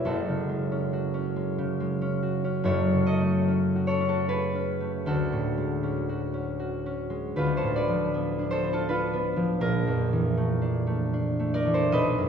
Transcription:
Already playing: B2 G#3 G#4 E5 F#5
0.05 F#1 F#2 F#4 A4
0.28 C#3
0.49 G#3
0.72 C#4
0.93 F#4
1.14 C#4
1.36 G#3
1.58 C#3
1.80 G#3
2.02 C#4
2.23 F#4
2.44 C#4
2.64 F#1 F#2 A4 C#5
2.94 C#3
3.07 A4 D#5
3.20 A3
3.48 C#4
3.76 F#4
3.87 A4 C#5
4.01 C#4
4.09 F#4 A4
4.28 F#4 G#4 B4
4.55 C#4
4.81 A3
5.06 D2 F#4 A4
5.33 A2
5.58 G#3
5.83 C#4
6.09 F#4
6.34 C#4
6.60 F#4
6.86 C#4
7.10 G#3
7.36 D2 F4 B4
7.57 A4 C5
7.63 A2
7.76 B4 D5
7.88 F3
8.14 B3
8.39 D4
8.51 A4 C5
8.64 B3
8.73 F4 A4
8.88 D4 F4 B4
9.13 B3
9.36 F3
9.61 A#1 F4 A#4
9.87 F2
10.13 E3
10.37 A3
10.62 D4
10.87 A3
11.14 D4
11.40 A3
11.54 A#4 D5
11.66 E3
11.74 A4 C5
11.92 B1 B4 D#5
12.18 F#2

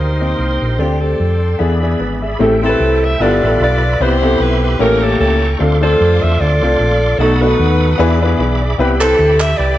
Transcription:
Already playing: A#3 A#4 C5 D#5 G5 C6
0.00 D2 D#4 G4
0.20 A#3 C4 D#4 G4
0.39 C2
0.62 A#1
0.78 D2 D3 A3 C4 D4 F4 G4 A4 D5 C6
0.85 G4
1.02 C4 A4
1.20 F2
1.59 E2 E3 B3 D4 E4 G#4 E5 B5
1.81 B3 D4 E4 G#4
2.00 G#1 D4 B4
2.22 G#4 E5
2.39 A1 A2 A3 C4 E4 G4 A4 E5 G5
2.62 A3 C4 E4 G4 A4 A#4
2.69 B4
2.80 C2
3.04 E5
3.20 G1 G2 B3 E4 F4 G4 A4 B4 D5 B5
3.43 A1 B3 F4 G4 A4 E5
3.60 B1 F4 B4 D5
4.00 C2 C3 B3 C4 E4 G4 B4 C5 B5 C6
4.22 B3 C4 E4 G4 A4
4.40 B1 B4
4.64 B4
4.79 A1 A2 A#3 C#4 E4 G4 A4 A#4 G5 A#5 C#6
5.01 A#3 C#4 E4 G4 A4
5.20 C#2 C#4 E4 A4
5.59 D2 D3 A3 C4 D4 F4 A4 F5 C6 D6
5.81 A3 C4 D4 F4 A4 C5
6.01 F2
6.23 E2 E5
6.41 D2 F4 A4 D5
6.62 C2 A3 C4 D4 F4 A4
6.79 A#1
7.18 B1 B2 A3 B3 D#4 F#4 A4 F#5 B5 D#6
7.41 A3 B3 D4 D#4 F#4 A4 B4
7.47 D#4
7.59 D#2
7.98 E2 E3 B3 D4 E4 G#4 B4 E5 B5 D6
8.21 B3 D4 E4 F4 B4
8.27 G#4
8.39 B1 D4 B4
8.62 D5
8.78 C2 C3 B3 C4 E4 G4 B4 G5 B5
9.00 C4 E4 G4 A4 B4 C5, clap
9.19 D2
9.40 E5, clap
9.57 C2 G4 B4 D5

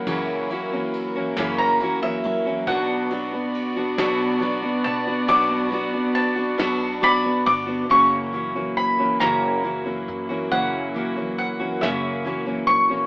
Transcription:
Already playing: F#3 E4 A#4 F#5
0.07 F#2 C#3 E3 A#3 C#4 F#4, kick, ride
0.49 E3 A#3 C#4 F#4, ride
0.72 E3 A#3 C#4 F#4
0.94 ride
1.15 E3 A#3 C#4 F#4
1.37 F#2 C#3 E3 A#3 C#4 F#4, snare, ride
1.58 A#5
1.80 E3 A#3 C#4 F#4, ride
2.02 E3 A#3 C#4 F#4 E5
2.23 F#3, ride
2.45 E3 A#3 C#4 F#4
2.66 B1 B2 F#3 B3 D4 F#4 D5 F#5, kick, ride
3.10 F#3 B3 D4 F#4, ride
3.32 B3 D4 F#4
3.54 ride
3.76 B3 D4 F#4
3.98 B1 B2 F#3 B3 D4 F#4, snare, ride
4.40 F#3 B3 D4 F#4, ride
4.62 B3 D4 F#4
4.84 B2 A5, ride
5.07 B3 D4 F#4
5.28 B1 B2 F#3 B3 D4 F#4 D6, kick, ride
5.70 F#3 B3 D4 F#4, ride
5.93 B3 D4 F#4
6.15 A5, ride
6.36 B3 D4 F#4
6.58 B1 B2 F#3 B3 D4 F#4, snare, ride
7.02 F#3 B3 D4 F#4 D5 B5, kick, ride
7.24 B3 D4 F#4
7.46 G1 D6, ride
7.66 B3 D4 F#4
7.89 F#1 F#2 C#3 E3 F#3 A#3 C#4 E4 F#4 C#6, kick, closed hi-hat
8.33 E3 A#3 C#4 F#4, closed hi-hat
8.55 E3 A#3 C#4 F#4
8.77 B5, closed hi-hat
8.99 E3 A#3 C#4 F#4
9.20 F#1 F#2 C#3 E3 A#3 C#4 F#4 A#5, snare, closed hi-hat
9.63 E3 A#3 C#4 F#4, closed hi-hat
9.85 E3 A#3 C#4 F#4
10.08 F#2, closed hi-hat
10.29 E3 A#3 C#4 F#4
10.51 F#1 F#2 C#3 E3 A#3 C#4 F#4 F#5, kick, closed hi-hat
10.94 E3 A#3 C#4 F#4, closed hi-hat
11.15 E3 A#3 C#4 F#4
11.38 F#5, closed hi-hat
11.60 E3 A#3 C#4 F#4
11.81 F#1 F#2 C#3 E3 A#3 C#4 F#4 E5, snare, closed hi-hat
12.24 E3 A#3 C#4 F#4, closed hi-hat
12.46 E3 A#3 C#4 F#4
12.67 A#1 C#6, closed hi-hat
12.89 E3 A#3 C#4 F#4

